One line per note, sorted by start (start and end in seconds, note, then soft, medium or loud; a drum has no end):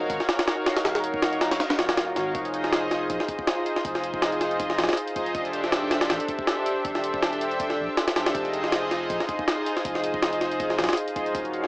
0.00 0.45 D#4 loud
0.00 0.45 F#4 loud
0.00 0.45 A#4 loud
0.00 0.45 C#5 loud
0.00 0.46 F5 loud
0.10 0.19 G#1 medium
0.10 kick loud
0.10 closed hi-hat medium
0.20 snare medium
0.29 snare loud
0.29 closed hi-hat medium
0.39 snare loud
0.39 closed hi-hat medium
0.47 0.83 D#4 loud
0.47 0.83 F#4 medium
0.47 0.83 A#4 medium
0.47 0.83 C#5 medium
0.47 0.83 F5 loud
0.47 snare loud
0.47 closed hi-hat medium
0.66 snare loud
0.66 closed hi-hat medium
0.76 snare loud
0.76 closed hi-hat medium
0.85 1.58 D#1 loud
0.85 2.14 D#4 loud
0.85 2.14 F#4 medium
0.85 2.14 A#4 medium
0.85 2.14 C#5 medium
0.85 2.14 F5 loud
0.85 snare loud
0.85 closed hi-hat medium
0.95 snare loud
0.95 closed hi-hat medium
1.04 closed hi-hat medium
1.14 kick loud
1.22 snare loud
1.22 closed hi-hat medium
1.33 closed hi-hat soft
1.41 snare loud
1.41 closed hi-hat medium
1.51 snare loud
1.51 closed hi-hat medium
1.60 snare loud
1.60 closed hi-hat medium
1.60 swell medium
1.70 snare loud
1.70 closed hi-hat medium
1.78 2.15 D#1 loud
1.78 snare loud
1.78 closed hi-hat medium
1.89 snare loud
1.89 closed hi-hat medium
1.98 snare loud
1.98 closed hi-hat medium
2.16 2.33 G#1 loud
2.16 2.33 D#4 medium
2.16 2.33 F#4 medium
2.16 2.33 A#4 medium
2.16 2.33 C#5 medium
2.16 2.33 F5 medium
2.16 snare medium
2.16 closed hi-hat medium
2.35 3.08 F1 loud
2.35 3.45 D#4 loud
2.35 3.45 F4 loud
2.35 3.45 G#4 medium
2.35 3.45 C5 loud
2.35 3.45 D#5 loud
2.35 kick loud
2.35 closed hi-hat medium
2.45 closed hi-hat soft
2.54 closed hi-hat medium
2.64 snare soft
2.72 snare loud
2.72 closed hi-hat medium
2.91 snare medium
2.91 closed hi-hat medium
3.10 3.19 A#1 medium
3.10 kick loud
3.10 closed hi-hat medium
3.20 snare medium
3.29 kick loud
3.29 closed hi-hat medium
3.39 kick loud
3.47 3.83 D#4 loud
3.47 3.83 F4 medium
3.47 3.83 G#4 medium
3.47 3.83 C5 medium
3.47 3.83 D#5 loud
3.47 snare loud
3.47 closed hi-hat medium
3.66 closed hi-hat medium
3.76 snare medium
3.85 4.80 F1 loud
3.85 5.14 D#4 loud
3.85 5.14 F4 loud
3.85 5.14 G#4 loud
3.85 5.14 C5 loud
3.85 5.14 D#5 loud
3.85 kick loud
3.85 closed hi-hat medium
3.95 snare medium
4.04 closed hi-hat medium
4.14 kick loud
4.22 snare loud
4.22 closed hi-hat medium
4.32 closed hi-hat soft
4.41 snare soft
4.41 closed hi-hat medium
4.51 closed hi-hat soft
4.60 kick loud
4.60 closed hi-hat medium
4.70 snare medium
4.78 4.88 C2 loud
4.78 snare loud
4.78 closed hi-hat medium
4.84 snare medium
4.84 closed hi-hat medium
4.89 snare medium
4.89 closed hi-hat medium
4.93 snare medium
4.93 closed hi-hat medium
4.97 closed hi-hat medium
5.08 closed hi-hat soft
5.16 5.33 D#1 medium
5.16 5.33 D#4 medium
5.16 5.33 F4 medium
5.16 5.33 G#4 medium
5.16 5.33 C5 medium
5.16 5.33 D#5 medium
5.16 kick loud
5.16 closed hi-hat medium
5.26 closed hi-hat soft
5.35 6.08 E1 loud
5.35 6.45 D4 loud
5.35 6.45 G4 loud
5.35 6.45 A4 loud
5.35 6.45 C5 loud
5.35 6.45 E5 loud
5.35 kick loud
5.35 closed hi-hat medium
5.45 closed hi-hat soft
5.53 closed hi-hat medium
5.64 snare soft
5.72 snare loud
5.72 closed hi-hat medium
5.91 snare loud
5.91 closed hi-hat medium
6.01 snare loud
6.01 closed hi-hat medium
6.10 6.19 A1 medium
6.10 snare loud
6.10 closed hi-hat medium
6.20 closed hi-hat medium
6.28 kick loud
6.28 closed hi-hat medium
6.39 kick loud
6.47 6.83 D4 loud
6.47 6.83 G4 medium
6.47 6.83 A4 medium
6.47 6.83 C5 medium
6.47 6.83 E5 loud
6.47 snare loud
6.47 closed hi-hat medium
6.66 closed hi-hat medium
6.85 7.80 E1 loud
6.85 8.14 D4 loud
6.85 8.14 G4 loud
6.85 8.14 A4 medium
6.85 8.14 C5 medium
6.85 8.14 E5 loud
6.85 kick loud
6.85 closed hi-hat medium
6.95 snare medium
7.04 closed hi-hat medium
7.14 kick loud
7.22 snare loud
7.22 closed hi-hat medium
7.33 closed hi-hat soft
7.41 closed hi-hat medium
7.51 closed hi-hat soft
7.60 kick loud
7.60 closed hi-hat medium
7.70 snare soft
7.79 7.88 B1 loud
7.97 snare loud
7.97 closed hi-hat medium
8.07 snare loud
8.07 closed hi-hat medium
8.16 8.33 D1 medium
8.16 8.33 D4 medium
8.16 8.33 G4 medium
8.16 8.33 A4 medium
8.16 8.33 C5 medium
8.16 8.33 E5 medium
8.16 snare loud
8.16 closed hi-hat medium
8.26 snare loud
8.26 closed hi-hat medium
8.34 9.08 F1 loud
8.34 9.45 D#4 loud
8.34 9.45 F4 medium
8.34 9.45 G#4 loud
8.34 9.45 C5 loud
8.34 9.45 D#5 loud
8.34 kick loud
8.34 closed hi-hat loud
8.45 closed hi-hat soft
8.54 closed hi-hat medium
8.64 snare soft
8.72 snare loud
8.72 closed hi-hat medium
8.91 snare medium
8.91 closed hi-hat medium
9.10 9.19 A#1 medium
9.10 kick loud
9.10 closed hi-hat medium
9.20 snare medium
9.29 kick loud
9.29 closed hi-hat medium
9.39 kick loud
9.47 9.83 D#4 loud
9.47 9.83 F4 medium
9.47 9.83 G#4 medium
9.47 9.83 C5 medium
9.47 9.83 D#5 loud
9.47 snare loud
9.47 closed hi-hat medium
9.66 closed hi-hat medium
9.77 snare medium
9.85 10.80 F1 loud
9.85 11.14 D#4 loud
9.85 11.14 F4 loud
9.85 11.14 G#4 medium
9.85 11.14 C5 medium
9.85 11.14 D#5 loud
9.85 kick loud
9.85 closed hi-hat medium
9.95 snare medium
10.04 closed hi-hat medium
10.14 kick loud
10.22 snare loud
10.22 closed hi-hat medium
10.33 closed hi-hat soft
10.41 snare medium
10.41 closed hi-hat medium
10.51 closed hi-hat soft
10.60 kick loud
10.60 closed hi-hat medium
10.70 snare soft
10.79 10.88 C2 loud
10.79 snare loud
10.79 closed hi-hat medium
10.84 snare medium
10.84 closed hi-hat medium
10.89 snare medium
10.89 closed hi-hat medium
10.93 snare loud
10.93 closed hi-hat medium
10.97 closed hi-hat medium
11.08 closed hi-hat soft
11.16 11.33 D#1 medium
11.16 11.33 D#4 medium
11.16 11.33 F4 medium
11.16 11.33 G#4 medium
11.16 11.33 C5 medium
11.16 11.33 D#5 loud
11.16 kick loud
11.16 closed hi-hat medium
11.26 closed hi-hat soft
11.35 11.67 D#1 loud
11.35 11.67 D#4 loud
11.35 11.67 F#4 loud
11.35 11.67 A#4 loud
11.35 11.67 C#5 loud
11.35 11.67 F5 loud
11.35 kick loud
11.35 closed hi-hat medium
11.45 closed hi-hat soft
11.54 closed hi-hat medium
11.64 snare soft